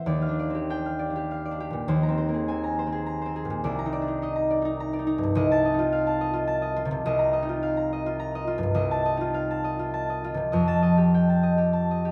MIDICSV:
0, 0, Header, 1, 2, 480
1, 0, Start_track
1, 0, Tempo, 619835
1, 61, Time_signature, 3, 2, 24, 8
1, 539, Tempo, 589391
1, 2459, Tempo, 573066
1, 8219, Tempo, 606673
1, 9948, End_track
2, 0, Start_track
2, 0, Title_t, "Harp"
2, 0, Program_c, 0, 46
2, 0, Note_on_c, 0, 45, 61
2, 0, Note_on_c, 0, 52, 51
2, 0, Note_on_c, 0, 60, 46
2, 0, Note_on_c, 0, 84, 69
2, 47, Note_on_c, 0, 39, 68
2, 50, Note_on_c, 0, 74, 59
2, 79, Note_off_c, 0, 52, 0
2, 87, Note_off_c, 0, 45, 0
2, 88, Note_off_c, 0, 84, 0
2, 91, Note_off_c, 0, 60, 0
2, 169, Note_on_c, 0, 77, 59
2, 221, Note_on_c, 0, 62, 52
2, 295, Note_off_c, 0, 74, 0
2, 305, Note_on_c, 0, 74, 58
2, 387, Note_on_c, 0, 60, 46
2, 422, Note_on_c, 0, 67, 51
2, 532, Note_off_c, 0, 62, 0
2, 542, Note_on_c, 0, 62, 54
2, 545, Note_on_c, 0, 79, 77
2, 652, Note_off_c, 0, 60, 0
2, 660, Note_off_c, 0, 77, 0
2, 669, Note_on_c, 0, 77, 57
2, 770, Note_off_c, 0, 74, 0
2, 780, Note_on_c, 0, 74, 59
2, 860, Note_off_c, 0, 62, 0
2, 869, Note_on_c, 0, 62, 48
2, 905, Note_off_c, 0, 67, 0
2, 915, Note_on_c, 0, 67, 57
2, 1029, Note_off_c, 0, 77, 0
2, 1039, Note_on_c, 0, 77, 61
2, 1146, Note_off_c, 0, 74, 0
2, 1156, Note_on_c, 0, 74, 56
2, 1192, Note_off_c, 0, 62, 0
2, 1202, Note_on_c, 0, 62, 51
2, 1268, Note_off_c, 0, 67, 0
2, 1277, Note_on_c, 0, 67, 64
2, 1360, Note_on_c, 0, 46, 53
2, 1376, Note_off_c, 0, 46, 0
2, 1381, Note_on_c, 0, 46, 56
2, 1495, Note_off_c, 0, 39, 0
2, 1503, Note_on_c, 0, 39, 74
2, 1506, Note_on_c, 0, 72, 63
2, 1513, Note_off_c, 0, 79, 0
2, 1514, Note_off_c, 0, 46, 0
2, 1521, Note_off_c, 0, 74, 0
2, 1522, Note_off_c, 0, 67, 0
2, 1524, Note_off_c, 0, 62, 0
2, 1626, Note_on_c, 0, 82, 70
2, 1671, Note_on_c, 0, 60, 55
2, 1735, Note_off_c, 0, 72, 0
2, 1745, Note_on_c, 0, 72, 59
2, 1833, Note_on_c, 0, 58, 51
2, 1878, Note_on_c, 0, 68, 55
2, 1988, Note_off_c, 0, 60, 0
2, 1993, Note_on_c, 0, 80, 65
2, 1998, Note_on_c, 0, 60, 57
2, 2098, Note_off_c, 0, 58, 0
2, 2110, Note_off_c, 0, 82, 0
2, 2120, Note_on_c, 0, 82, 63
2, 2233, Note_off_c, 0, 72, 0
2, 2243, Note_on_c, 0, 72, 58
2, 2297, Note_off_c, 0, 60, 0
2, 2306, Note_on_c, 0, 60, 52
2, 2343, Note_off_c, 0, 68, 0
2, 2352, Note_on_c, 0, 68, 64
2, 2456, Note_off_c, 0, 82, 0
2, 2466, Note_on_c, 0, 82, 66
2, 2585, Note_off_c, 0, 72, 0
2, 2595, Note_on_c, 0, 72, 60
2, 2618, Note_off_c, 0, 60, 0
2, 2628, Note_on_c, 0, 60, 54
2, 2704, Note_off_c, 0, 68, 0
2, 2714, Note_on_c, 0, 68, 66
2, 2790, Note_on_c, 0, 46, 63
2, 2823, Note_off_c, 0, 46, 0
2, 2834, Note_on_c, 0, 46, 61
2, 2949, Note_on_c, 0, 36, 74
2, 2954, Note_on_c, 0, 74, 68
2, 2964, Note_off_c, 0, 39, 0
2, 2964, Note_off_c, 0, 68, 0
2, 2965, Note_off_c, 0, 46, 0
2, 2968, Note_off_c, 0, 80, 0
2, 2969, Note_off_c, 0, 77, 0
2, 3064, Note_off_c, 0, 82, 0
2, 3074, Note_on_c, 0, 82, 85
2, 3132, Note_on_c, 0, 63, 59
2, 3179, Note_off_c, 0, 74, 0
2, 3189, Note_on_c, 0, 74, 69
2, 3266, Note_on_c, 0, 62, 56
2, 3306, Note_off_c, 0, 63, 0
2, 3316, Note_on_c, 0, 63, 59
2, 3429, Note_off_c, 0, 63, 0
2, 3436, Note_on_c, 0, 63, 59
2, 3444, Note_on_c, 0, 75, 68
2, 3531, Note_off_c, 0, 62, 0
2, 3540, Note_off_c, 0, 82, 0
2, 3550, Note_on_c, 0, 82, 66
2, 3664, Note_off_c, 0, 74, 0
2, 3674, Note_on_c, 0, 74, 68
2, 3759, Note_off_c, 0, 63, 0
2, 3769, Note_on_c, 0, 63, 62
2, 3786, Note_off_c, 0, 63, 0
2, 3795, Note_on_c, 0, 63, 67
2, 3914, Note_off_c, 0, 82, 0
2, 3924, Note_on_c, 0, 82, 73
2, 4021, Note_off_c, 0, 74, 0
2, 4031, Note_on_c, 0, 74, 66
2, 4070, Note_off_c, 0, 63, 0
2, 4080, Note_on_c, 0, 63, 57
2, 4136, Note_off_c, 0, 63, 0
2, 4146, Note_on_c, 0, 63, 74
2, 4242, Note_on_c, 0, 43, 69
2, 4274, Note_off_c, 0, 43, 0
2, 4284, Note_on_c, 0, 43, 64
2, 4377, Note_off_c, 0, 36, 0
2, 4380, Note_off_c, 0, 75, 0
2, 4384, Note_on_c, 0, 36, 81
2, 4393, Note_on_c, 0, 75, 73
2, 4408, Note_off_c, 0, 74, 0
2, 4413, Note_off_c, 0, 43, 0
2, 4414, Note_off_c, 0, 82, 0
2, 4521, Note_on_c, 0, 81, 87
2, 4627, Note_off_c, 0, 75, 0
2, 4637, Note_on_c, 0, 75, 67
2, 4699, Note_off_c, 0, 63, 0
2, 4709, Note_on_c, 0, 63, 60
2, 4749, Note_on_c, 0, 65, 66
2, 4864, Note_on_c, 0, 77, 79
2, 4974, Note_off_c, 0, 81, 0
2, 4978, Note_off_c, 0, 63, 0
2, 4984, Note_on_c, 0, 81, 71
2, 5092, Note_off_c, 0, 75, 0
2, 5102, Note_on_c, 0, 75, 74
2, 5197, Note_off_c, 0, 65, 0
2, 5207, Note_on_c, 0, 65, 72
2, 5314, Note_off_c, 0, 81, 0
2, 5324, Note_on_c, 0, 81, 75
2, 5435, Note_off_c, 0, 75, 0
2, 5445, Note_on_c, 0, 75, 64
2, 5557, Note_off_c, 0, 65, 0
2, 5567, Note_on_c, 0, 65, 80
2, 5641, Note_on_c, 0, 48, 69
2, 5678, Note_off_c, 0, 48, 0
2, 5688, Note_on_c, 0, 48, 67
2, 5804, Note_off_c, 0, 36, 0
2, 5804, Note_off_c, 0, 75, 0
2, 5811, Note_on_c, 0, 36, 84
2, 5817, Note_on_c, 0, 75, 76
2, 5823, Note_off_c, 0, 81, 0
2, 5829, Note_off_c, 0, 48, 0
2, 5861, Note_off_c, 0, 72, 0
2, 5894, Note_off_c, 0, 60, 0
2, 5922, Note_on_c, 0, 82, 87
2, 6031, Note_off_c, 0, 75, 0
2, 6041, Note_on_c, 0, 75, 67
2, 6120, Note_on_c, 0, 63, 57
2, 6164, Note_off_c, 0, 65, 0
2, 6174, Note_on_c, 0, 65, 67
2, 6279, Note_off_c, 0, 77, 0
2, 6289, Note_on_c, 0, 77, 70
2, 6393, Note_off_c, 0, 63, 0
2, 6399, Note_off_c, 0, 82, 0
2, 6409, Note_on_c, 0, 82, 68
2, 6530, Note_off_c, 0, 75, 0
2, 6540, Note_on_c, 0, 75, 68
2, 6643, Note_off_c, 0, 65, 0
2, 6654, Note_on_c, 0, 65, 73
2, 6755, Note_off_c, 0, 82, 0
2, 6765, Note_on_c, 0, 82, 73
2, 6886, Note_off_c, 0, 75, 0
2, 6896, Note_on_c, 0, 75, 71
2, 6988, Note_off_c, 0, 65, 0
2, 6998, Note_on_c, 0, 65, 73
2, 7087, Note_on_c, 0, 43, 70
2, 7119, Note_off_c, 0, 43, 0
2, 7129, Note_on_c, 0, 43, 62
2, 7217, Note_off_c, 0, 75, 0
2, 7218, Note_off_c, 0, 36, 0
2, 7225, Note_on_c, 0, 36, 75
2, 7230, Note_on_c, 0, 75, 73
2, 7268, Note_off_c, 0, 82, 0
2, 7269, Note_off_c, 0, 43, 0
2, 7366, Note_on_c, 0, 81, 87
2, 7474, Note_off_c, 0, 75, 0
2, 7484, Note_on_c, 0, 75, 72
2, 7582, Note_on_c, 0, 63, 56
2, 7604, Note_off_c, 0, 65, 0
2, 7614, Note_on_c, 0, 65, 68
2, 7717, Note_off_c, 0, 77, 0
2, 7727, Note_on_c, 0, 77, 77
2, 7849, Note_off_c, 0, 63, 0
2, 7854, Note_off_c, 0, 81, 0
2, 7864, Note_on_c, 0, 81, 66
2, 7968, Note_off_c, 0, 75, 0
2, 7978, Note_on_c, 0, 75, 64
2, 8092, Note_off_c, 0, 65, 0
2, 8102, Note_on_c, 0, 65, 67
2, 8214, Note_off_c, 0, 81, 0
2, 8224, Note_on_c, 0, 81, 75
2, 8341, Note_off_c, 0, 75, 0
2, 8350, Note_on_c, 0, 75, 63
2, 8456, Note_off_c, 0, 65, 0
2, 8466, Note_on_c, 0, 65, 72
2, 8545, Note_on_c, 0, 48, 62
2, 8561, Note_off_c, 0, 48, 0
2, 8567, Note_on_c, 0, 48, 56
2, 8676, Note_off_c, 0, 75, 0
2, 8685, Note_on_c, 0, 75, 68
2, 8693, Note_on_c, 0, 41, 77
2, 8700, Note_off_c, 0, 36, 0
2, 8707, Note_off_c, 0, 48, 0
2, 8800, Note_off_c, 0, 81, 0
2, 8810, Note_on_c, 0, 81, 83
2, 8917, Note_off_c, 0, 75, 0
2, 8926, Note_on_c, 0, 75, 68
2, 9044, Note_on_c, 0, 67, 58
2, 9179, Note_on_c, 0, 79, 66
2, 9289, Note_off_c, 0, 81, 0
2, 9298, Note_on_c, 0, 81, 62
2, 9397, Note_off_c, 0, 75, 0
2, 9406, Note_on_c, 0, 75, 55
2, 9513, Note_off_c, 0, 67, 0
2, 9522, Note_on_c, 0, 67, 58
2, 9633, Note_off_c, 0, 81, 0
2, 9643, Note_on_c, 0, 81, 59
2, 9775, Note_off_c, 0, 75, 0
2, 9785, Note_on_c, 0, 75, 55
2, 9886, Note_off_c, 0, 67, 0
2, 9896, Note_on_c, 0, 67, 59
2, 9948, Note_off_c, 0, 41, 0
2, 9948, Note_off_c, 0, 65, 0
2, 9948, Note_off_c, 0, 67, 0
2, 9948, Note_off_c, 0, 75, 0
2, 9948, Note_off_c, 0, 77, 0
2, 9948, Note_off_c, 0, 79, 0
2, 9948, Note_off_c, 0, 81, 0
2, 9948, End_track
0, 0, End_of_file